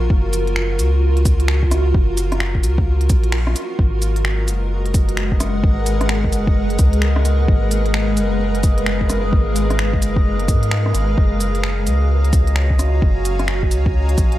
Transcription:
Already playing: ambient pad F4 F#4 A#4
0.10 sub bass F#1, kick
0.33 closed hi-hat, cabasa
0.47 closed hi-hat
0.56 finger snap
0.79 sub bass C#2, closed hi-hat, cabasa
1.17 closed hi-hat
1.25 kick, closed hi-hat, cabasa
1.40 closed hi-hat
1.48 finger snap
1.63 kick
1.71 cross-stick, closed hi-hat, cabasa
1.94 sub bass F#1, kick
2.17 closed hi-hat, cabasa
2.32 cross-stick, closed hi-hat
2.40 finger snap
2.55 kick
2.63 sub bass C#2, closed hi-hat, cabasa
2.78 kick
3.01 closed hi-hat
3.10 sub bass A#1, kick, closed hi-hat, cabasa
3.24 closed hi-hat
3.32 finger snap
3.47 cross-stick
3.56 closed hi-hat, cabasa
3.78 sub bass G#1, ambient pad G#3 G#4 A#4 B4 F#5, synth texture D#5, kick
4.02 closed hi-hat, cabasa
4.16 closed hi-hat
4.25 finger snap
4.48 sub bass F#1, closed hi-hat, cabasa
4.86 closed hi-hat
4.94 kick, closed hi-hat, cabasa
5.09 closed hi-hat
5.17 finger snap
5.32 kick
5.40 cross-stick, closed hi-hat, cabasa
5.63 sub bass G#1, kick
5.86 closed hi-hat, cabasa
6.01 cross-stick, closed hi-hat
6.09 finger snap
6.24 kick
6.32 sub bass F#1, closed hi-hat, cabasa
6.47 kick
6.70 closed hi-hat
6.79 sub bass C#2, kick, closed hi-hat, cabasa
6.93 closed hi-hat
7.02 finger snap
7.16 cross-stick
7.25 closed hi-hat, cabasa
7.48 sub bass G#1, ambient pad F5, kick
7.71 closed hi-hat, cabasa
7.86 closed hi-hat
7.94 finger snap
8.17 sub bass F#1, closed hi-hat, cabasa
8.55 closed hi-hat
8.63 kick, closed hi-hat, cabasa
8.78 closed hi-hat
8.86 finger snap
9.01 kick
9.10 cross-stick, closed hi-hat, cabasa
9.33 sub bass G#1, kick
9.56 closed hi-hat, cabasa
9.70 cross-stick, closed hi-hat
9.79 finger snap
9.93 kick
10.02 sub bass F#1, closed hi-hat, cabasa
10.16 kick
10.40 closed hi-hat
10.48 sub bass G#2, kick, closed hi-hat, cabasa
10.63 closed hi-hat
10.71 finger snap
10.86 cross-stick
10.94 sub bass G#1, closed hi-hat, cabasa
11.17 sub bass F#1, ambient pad F#4 C#5 G#5 A#5, kick
11.40 closed hi-hat, cabasa
11.55 closed hi-hat
11.64 finger snap
11.86 sub bass C#2, closed hi-hat, cabasa
12.25 closed hi-hat
12.33 kick, closed hi-hat, cabasa
12.47 closed hi-hat
12.56 finger snap
12.70 kick
12.79 cross-stick, closed hi-hat, cabasa
13.02 sub bass F#1, kick
13.25 closed hi-hat, cabasa
13.39 cross-stick, closed hi-hat
13.48 finger snap
13.63 kick
13.71 sub bass C#2, closed hi-hat, cabasa
13.86 kick
14.09 closed hi-hat
14.18 sub bass A#1, kick, closed hi-hat, cabasa
14.32 closed hi-hat

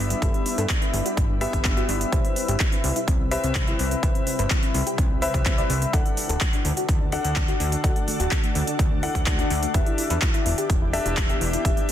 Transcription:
Already playing: ambient pad G3 D4 E4 B4, grand piano B3 G4 E5
0.00 analog synth bass G1
0.10 synth pluck G3, closed hi-hat
0.22 analog synth bass G1, grand piano B3 G4 E5, synth pluck A4, kick, closed hi-hat
0.34 synth pluck D4, closed hi-hat
0.46 synth pluck D4, open hi-hat
0.58 analog synth bass G2, synth pluck A4, closed hi-hat
0.70 synth pluck D4, kick, clap, closed hi-hat
0.82 synth pluck D4, closed hi-hat
0.93 analog synth bass G1, synth pluck D4, open hi-hat
1.06 synth pluck F#4, closed hi-hat
1.17 analog synth bass G1, synth pluck D4, kick, closed hi-hat
1.30 synth pluck D4
1.41 grand piano B3 G4 E5, synth pluck G4, open hi-hat
1.53 analog synth bass G1, synth pluck D4, kick, closed hi-hat
1.65 synth pluck D4, kick, clap, closed hi-hat
1.77 synth pluck F#4, closed hi-hat
1.89 analog synth bass G1, synth pluck D4, open hi-hat
2.01 synth pluck D4, closed hi-hat
2.12 analog synth bass C2, ambient pad C3 G3 B4, grand piano C4 B4 E5, synth pluck G4, kick, closed hi-hat
2.25 synth pluck C4, closed hi-hat
2.36 synth pluck C4, open hi-hat
2.48 analog synth bass G1, synth pluck G4, closed hi-hat
2.60 synth pluck C4, kick, clap, closed hi-hat
2.72 synth pluck C4, closed hi-hat
2.84 analog synth bass C2, synth pluck C4, open hi-hat
2.96 synth pluck E4, closed hi-hat
3.08 analog synth bass C2, synth pluck C4, kick, closed hi-hat
3.20 synth pluck C4
3.31 grand piano C4 B4 E5, synth pluck G4, open hi-hat
3.44 analog synth bass C2, synth pluck C4, closed hi-hat
3.55 kick, clap, closed hi-hat
3.67 synth pluck E4, closed hi-hat
3.79 analog synth bass C2, synth pluck C4, open hi-hat
3.91 synth pluck C4, closed hi-hat
4.03 analog synth bass C2, grand piano C4 B4 E5, synth pluck B4, kick, closed hi-hat
4.15 synth pluck C4, closed hi-hat
4.27 synth pluck C4, open hi-hat
4.39 analog synth bass G1, synth pluck B4, closed hi-hat
4.50 synth pluck C4, kick, clap, closed hi-hat
4.63 synth pluck C4, closed hi-hat
4.74 analog synth bass C2, synth pluck C4, open hi-hat
4.87 synth pluck G4, closed hi-hat
4.98 analog synth bass C2, synth pluck C4, kick, closed hi-hat
5.10 synth pluck C4
5.22 grand piano C4 B4 E5, synth pluck B4, open hi-hat
5.34 analog synth bass C2, synth pluck C4, kick, closed hi-hat
5.46 synth pluck C4, kick, clap, closed hi-hat
5.58 synth pluck D5, closed hi-hat
5.70 analog synth bass C2, synth pluck C4, open hi-hat
5.82 synth pluck C4, closed hi-hat
5.93 analog synth bass D2, ambient pad D3 D4 F#4 A4, grand piano D4 A4 F#5, synth pluck A4, kick, closed hi-hat
6.05 synth pluck D4, closed hi-hat
6.17 synth pluck D4, open hi-hat
6.29 analog synth bass D1, synth pluck A4, closed hi-hat
6.41 synth pluck D4, kick, clap, closed hi-hat
6.53 synth pluck D4, closed hi-hat
6.65 analog synth bass D2, synth pluck D4, open hi-hat
6.77 synth pluck F#4, closed hi-hat
6.89 analog synth bass D2, synth pluck D4, kick, closed hi-hat
7.01 synth pluck D4
7.12 grand piano D4 A4 F#5, synth pluck F#4, open hi-hat
7.25 analog synth bass D2, synth pluck D4, closed hi-hat
7.36 synth pluck D4, kick, clap, closed hi-hat
7.48 synth pluck F#4, closed hi-hat
7.60 analog synth bass D2, synth pluck D4, open hi-hat
7.72 synth pluck D4, closed hi-hat
7.84 analog synth bass D2, grand piano D4 A4 F#5, synth pluck F#4, kick, closed hi-hat
7.96 synth pluck A3, closed hi-hat
8.08 synth pluck A3, open hi-hat
8.20 analog synth bass D1, synth pluck F#4, closed hi-hat
8.31 synth pluck A3, kick, clap, closed hi-hat
8.44 synth pluck A3, closed hi-hat
8.55 analog synth bass D2, synth pluck A3, open hi-hat
8.67 synth pluck D4, closed hi-hat
8.79 analog synth bass D2, synth pluck A3, kick, closed hi-hat
8.91 synth pluck A3
9.03 grand piano D4 A4 F#5, synth pluck E4, open hi-hat
9.15 analog synth bass D2, synth pluck A3, kick, closed hi-hat
9.26 synth pluck A3, kick, clap, closed hi-hat
9.39 synth pluck D4, closed hi-hat
9.50 analog synth bass D2, synth pluck A3, open hi-hat
9.63 synth pluck A3, closed hi-hat
9.74 analog synth bass E1, ambient pad E3 B3 G4, grand piano D4 G4 E5, synth pluck B4, kick, closed hi-hat
9.86 synth pluck E4, closed hi-hat
9.98 synth pluck E4, open hi-hat
10.10 analog synth bass E2, synth pluck B4, closed hi-hat
10.22 synth pluck E4, kick, clap, closed hi-hat
10.34 synth pluck E4, closed hi-hat
10.46 analog synth bass E1, synth pluck E4, open hi-hat
10.58 synth pluck G4, closed hi-hat
10.70 analog synth bass E1, synth pluck E4, kick, closed hi-hat
10.82 synth pluck E4
10.93 grand piano D4 G4 E5, synth pluck A4, open hi-hat
11.06 analog synth bass E1, synth pluck E4, closed hi-hat
11.17 synth pluck E4, kick, clap, closed hi-hat
11.30 synth pluck G4, closed hi-hat
11.41 analog synth bass E1, synth pluck E4, open hi-hat
11.53 synth pluck E4, closed hi-hat
11.65 analog synth bass E1, grand piano D4 G4 E5, synth pluck G4, kick, closed hi-hat
11.77 synth pluck B3, closed hi-hat
11.89 synth pluck B3, open hi-hat

